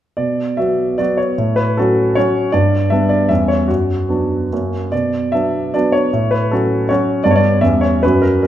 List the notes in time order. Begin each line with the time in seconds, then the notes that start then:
0.17 B2 D5
0.57 F#3 B3 F#4 E5
0.98 F#3 B3 F#4 D5
1.17 C#5
1.38 A2
1.56 B4
1.77 F#3 C#4 F#4 A4
2.15 F#3 C#4 F#4 C#5
2.52 G2 D5
2.90 G3 B3 D4 E5
3.09 D5
3.29 E2 G3 C#4 E5
3.48 C#5
3.68 F#2 F#4
4.09 F#3 B3 D4
4.52 F#2 F#3 A#3 C#4
4.92 B2 D5
5.32 F#3 B3 D4 E5
5.74 F#3 B3 D4 D5
5.92 C#5
6.13 A2
6.31 B4
6.51 F#3 C#4 F#4 A4
6.89 F#3 C#4 F#4 C#5
7.24 G2 G3 B3 D4 D5
7.31 C#5
7.36 D5
7.61 E2 G3 C#4 E5
7.81 C#5
8.03 F#2 F#3 C#4 F#4 B4
8.22 A#4
8.43 A#4